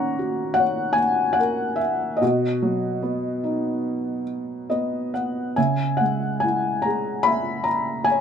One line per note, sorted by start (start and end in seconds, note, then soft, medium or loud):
0.00 2.19 D#3 medium
0.00 0.94 A#3 soft
0.00 1.35 C#4 soft
0.00 0.54 F#5 medium
0.00 0.60 A#5 loud
0.00 2.24 C#6 medium
0.19 1.77 F#4 soft
0.54 0.97 F#5 medium
0.58 2.18 C#5 medium
0.93 1.38 G#5 medium
1.33 1.79 F#5 medium
1.39 2.20 A#4 medium
1.76 2.21 E5 medium
2.17 4.68 D#5 medium
2.22 5.53 B2 medium
2.22 5.10 F#4 soft
2.62 4.23 F#3 soft
3.02 4.66 B3 soft
3.44 5.11 D#4 soft
4.70 5.54 B3 soft
4.70 5.11 D#5 medium
5.14 5.54 F#5 soft
5.56 8.21 C#3 soft
5.56 7.23 E5 soft
5.56 6.01 G#5 medium
5.97 7.64 G#3 soft
5.97 6.42 F#5 medium
6.40 8.05 E4 soft
6.40 6.85 G#5 medium
6.82 8.21 G#4 soft
6.82 7.26 A#5 medium
7.23 8.21 E5 medium
7.23 7.67 B5 medium
7.64 8.08 A#5 medium
8.04 8.21 G#5 medium
8.10 8.21 C#5 medium